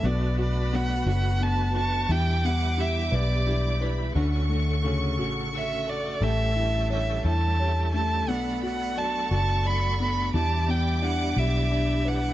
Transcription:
0.03 B1 B2 F#3 A3 B3 D4 F#4 B4 D5 A5 B5
0.38 A3 D4 F#4 D5
0.73 F#3 A3 B3 D4 F#4 F#5
1.06 F#1 B2 F#3 A3 D4 F#4 F#5
1.40 F#3 A3 B3 D4 F#4 A5
1.75 A3 D4 F#4 A5 C#6
2.09 E2 B2 E3 G3 D4 E4 G4 E5 G5 B5 D6
2.43 E3 G3 B3 D4 E4 F#5
2.77 E3 G3 D4 E4 G4 E5
3.11 B1 E2 B2 E3 G3 D4 E4 B4 D5
3.46 E3 G3 D4 E4 G4
3.80 E3 G3 D4 E4 B4 B5
4.15 D2 D3 A3 C#4 F#4 A4 F#5 C#6
4.49 A3 C#4 F#4
4.83 C#3 D3 A3 C#4 F#4
5.18 A1 D3 A3 C#4 F#4
5.52 D3 A3 C#4 F#4 E5
5.86 A3 F#4 A4 D5
6.21 A1 A2 E3 G3 A3 C#4 G4 E5 G5 A5 C#6
6.55 G3 C#4 E4 G4
6.90 E3 G3 C#4 G4 C#5 E5
7.25 E2 A2 E3 G3 C#4 E4 G4 A5
7.59 E3 G3 C#4 G4 C#5
7.94 G3 A3 C#4 G4 A5
8.28 B1 B2 F#3 A3 B3 D4 F#4 D5 F#5 B5
8.62 A3 D4 F#4 F#5
8.96 F#3 A3 D4 F#4 D5 A5 C#6
9.31 F#1 B2 F#3 A3 D4 F#4 A5
9.65 F#3 A3 D4 F#4 D5 B5
9.99 A3 B3 D4 F#4 B5
10.33 E2 B2 E3 G3 D4 E4 G4 D5 E5 A5 D6
10.68 E3 G3 B3 D4 E4 G5
11.02 E3 G3 D4 E4 F#5
11.37 B1 E2 B2 E3 G3 D4 E4 G4 E5
11.71 E3 G3 D4 E4
12.05 E3 G3 D4 E4 B4 F#5

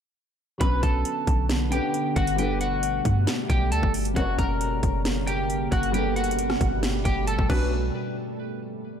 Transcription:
0.58 B1 D3 F#3 B3 C#4 B4 B5, kick, closed hi-hat
0.62 D4 B4
0.83 B1 A4 A5, kick, closed hi-hat
1.05 closed hi-hat
1.27 B1, kick, closed hi-hat
1.49 snare, closed hi-hat
1.70 D3 B3 C#4 D4 G4 B4 G5, closed hi-hat
1.94 closed hi-hat
2.16 G1 F#4 F#5, kick, closed hi-hat
2.27 closed hi-hat
2.36 B2 G3 A3 B3 D4 G4 G5, closed hi-hat
2.40 A4 B4
2.61 F#4 F#5, closed hi-hat
2.83 closed hi-hat
3.05 G2, kick, closed hi-hat
3.27 snare, closed hi-hat
3.50 B1 G4 G5, kick, closed hi-hat
3.72 D2 A4 A5, closed hi-hat
3.83 G1, kick
3.94 closed hi-hat, open hi-hat
4.05 closed hi-hat
4.14 F#1 C#3 A#3 C#4 F#4 A#4 F#5, kick, closed hi-hat
4.18 A#4 C#5
4.39 F#1 A#4 A#5, kick, closed hi-hat
4.61 closed hi-hat
4.83 F#1, kick, closed hi-hat
5.05 snare, closed hi-hat
5.27 G4 G5, closed hi-hat
5.50 closed hi-hat
5.72 G1 F#4 F#5, kick, closed hi-hat
5.83 closed hi-hat
5.91 B2 G3 A3 B3 D4 G4 G5, closed hi-hat
5.95 A4 B4
6.16 F#4 F#5, closed hi-hat
6.24 closed hi-hat
6.31 closed hi-hat
6.39 closed hi-hat
6.50 cross-stick, snare
6.61 G1, kick, closed hi-hat
6.83 snare, closed hi-hat
7.05 G1 G4 G5, kick, closed hi-hat
7.27 A4 A5, closed hi-hat
7.39 G1, kick
7.50 B1 F#3 C#4 D4 B4, kick, crash

